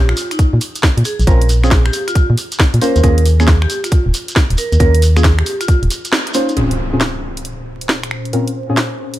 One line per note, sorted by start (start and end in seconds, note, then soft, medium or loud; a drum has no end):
0.00 0.14 A#1 loud
0.09 0.18 F4 medium
0.09 finger snap medium
0.17 open hi-hat medium
0.17 shekere medium
0.31 0.48 D#4 medium
0.31 finger snap soft
0.31 closed hi-hat medium
0.31 shekere soft
0.39 kick loud
0.39 closed hi-hat medium
0.39 shekere soft
0.53 0.59 A#2 medium
0.61 open hi-hat loud
0.61 shekere medium
0.75 closed hi-hat medium
0.75 shekere medium
0.83 kick loud
0.83 snare loud
0.97 1.03 A#2 medium
0.97 closed hi-hat medium
1.05 1.20 G#4 medium
1.05 open hi-hat medium
1.05 shekere medium
1.19 1.25 A#1 medium
1.19 closed hi-hat soft
1.19 shekere soft
1.27 1.90 A#1 loud
1.27 1.39 C4 medium
1.27 1.39 C#4 medium
1.27 1.39 F4 medium
1.27 1.46 A#4 loud
1.27 1.39 A#4 loud
1.27 kick loud
1.27 closed hi-hat medium
1.27 shekere soft
1.42 closed hi-hat medium
1.49 open hi-hat loud
1.49 shekere medium
1.63 1.70 C4 medium
1.63 1.70 C#4 medium
1.63 1.70 F4 medium
1.63 1.72 G#4 medium
1.63 1.70 G#4 loud
1.63 finger snap soft
1.63 shekere soft
1.71 kick loud
1.71 snare loud
1.86 1.94 G4 medium
1.86 finger snap medium
1.93 open hi-hat medium
1.93 shekere medium
2.08 2.24 F4 medium
2.08 finger snap soft
2.08 closed hi-hat medium
2.08 shekere medium
2.15 kick loud
2.15 closed hi-hat medium
2.15 shekere soft
2.30 2.35 A#2 loud
2.37 open hi-hat loud
2.37 shekere medium
2.52 closed hi-hat medium
2.52 shekere medium
2.59 kick loud
2.59 snare loud
2.74 2.80 A#2 medium
2.74 closed hi-hat medium
2.81 2.98 A#3 medium
2.81 2.98 C#4 medium
2.81 2.98 F4 medium
2.81 2.96 A#4 medium
2.81 2.98 C5 loud
2.81 open hi-hat medium
2.81 shekere loud
2.96 3.02 D#2 medium
2.96 closed hi-hat soft
2.96 shekere soft
3.03 3.66 D#2 loud
3.03 3.16 A#3 loud
3.03 3.16 C#4 medium
3.03 3.16 F4 medium
3.03 3.16 G#4 loud
3.03 3.23 A#4 loud
3.03 kick loud
3.03 closed hi-hat medium
3.03 shekere soft
3.18 closed hi-hat medium
3.26 open hi-hat loud
3.26 shekere medium
3.40 3.46 A#3 medium
3.40 3.46 C#4 medium
3.40 3.46 F4 medium
3.40 3.49 G#4 medium
3.40 3.46 G#4 loud
3.40 finger snap medium
3.40 shekere soft
3.48 kick loud
3.48 snare loud
3.62 3.71 G4 medium
3.62 finger snap medium
3.70 open hi-hat medium
3.70 shekere medium
3.84 4.00 F4 medium
3.84 finger snap soft
3.84 closed hi-hat medium
3.84 shekere medium
3.91 kick loud
3.91 closed hi-hat medium
3.91 shekere soft
4.06 4.12 D#1 loud
4.14 open hi-hat loud
4.14 shekere medium
4.28 closed hi-hat medium
4.28 shekere soft
4.36 kick loud
4.36 snare loud
4.50 4.56 D#1 medium
4.50 closed hi-hat medium
4.58 4.73 A#4 medium
4.58 open hi-hat medium
4.58 shekere medium
4.72 4.78 D#2 medium
4.72 closed hi-hat soft
4.72 shekere soft
4.80 5.43 D#2 loud
4.80 4.92 A#3 loud
4.80 4.92 C#4 medium
4.80 4.92 F4 medium
4.80 4.99 A#4 loud
4.80 4.92 A#4 loud
4.80 kick loud
4.80 closed hi-hat medium
4.80 shekere soft
4.95 closed hi-hat medium
5.02 open hi-hat loud
5.02 shekere medium
5.17 5.23 A#3 medium
5.17 5.23 C#4 medium
5.17 5.23 F4 medium
5.17 5.23 G#4 loud
5.17 5.25 G#4 medium
5.17 finger snap medium
5.17 shekere medium
5.24 kick loud
5.24 snare loud
5.24 shekere soft
5.39 5.47 G4 medium
5.39 finger snap medium
5.46 open hi-hat loud
5.46 shekere medium
5.61 5.77 F4 loud
5.61 finger snap soft
5.61 closed hi-hat medium
5.61 shekere medium
5.68 kick loud
5.68 closed hi-hat medium
5.68 shekere soft
5.83 5.88 D#1 loud
5.83 closed hi-hat soft
5.90 open hi-hat loud
5.90 shekere medium
6.05 closed hi-hat medium
6.05 shekere medium
6.13 snare loud
6.13 shekere soft
6.27 closed hi-hat medium
6.34 6.51 A#3 medium
6.34 6.51 C#4 medium
6.34 6.49 D#4 medium
6.34 6.51 F4 medium
6.34 6.51 C5 loud
6.34 open hi-hat loud
6.34 shekere medium
6.49 closed hi-hat soft
6.49 shekere soft
6.57 6.69 A#2 medium
6.57 9.19 A#2 medium
6.57 6.69 C4 medium
6.57 6.69 C#4 medium
6.57 9.19 C#4 medium
6.57 6.69 F4 medium
6.57 9.19 F4 medium
6.57 9.19 G#4 medium
6.57 6.69 G#4 loud
6.57 9.19 C5 medium
6.57 closed hi-hat medium
6.57 impact medium
6.71 closed hi-hat medium
6.93 6.99 A#2 medium
6.93 6.99 C4 medium
6.93 6.99 C#4 medium
6.93 6.99 F4 medium
6.93 6.99 G#4 loud
7.01 snare loud
7.37 closed hi-hat medium
7.45 closed hi-hat medium
7.81 closed hi-hat medium
7.89 snare loud
8.03 finger snap medium
8.03 closed hi-hat soft
8.11 finger snap medium
8.25 closed hi-hat soft
8.33 8.45 A#2 medium
8.33 8.45 C4 medium
8.33 8.45 C#4 medium
8.33 8.45 F4 medium
8.33 8.45 A#4 loud
8.33 closed hi-hat medium
8.48 closed hi-hat medium
8.69 8.76 A#2 medium
8.69 8.76 C4 medium
8.69 8.76 C#4 medium
8.69 8.76 F4 medium
8.69 8.76 G#4 medium
8.77 snare loud
9.14 closed hi-hat medium